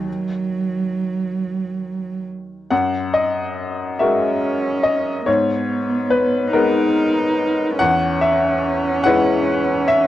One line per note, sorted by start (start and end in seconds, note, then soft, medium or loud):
0.00 2.72 D#3 soft
0.08 2.24 F#3 medium
2.70 3.97 F#2 soft
2.70 3.11 F#5 medium
3.14 3.96 D#5 medium
3.99 5.23 G#3 soft
3.99 5.23 C#4 medium
3.99 5.23 F#4 soft
3.99 5.24 A#4 soft
3.99 4.81 E5 soft
4.83 5.23 D#5 medium
5.26 6.49 G#2 soft
5.26 6.51 B3 medium
5.26 6.07 C#5 medium
6.10 6.50 B4 medium
6.52 7.77 G#3 soft
6.52 7.77 B3 soft
6.52 7.77 D#4 medium
6.52 7.77 D#4 soft
6.52 7.76 A#4 medium
7.79 9.02 E2 soft
7.79 10.07 C#4 medium
7.79 8.19 F#5 medium
8.21 9.01 E5 medium
9.04 10.07 G#3 soft
9.04 10.07 E4 soft
9.04 10.07 B4 soft
9.04 9.84 F#5 medium
9.88 10.07 E5 medium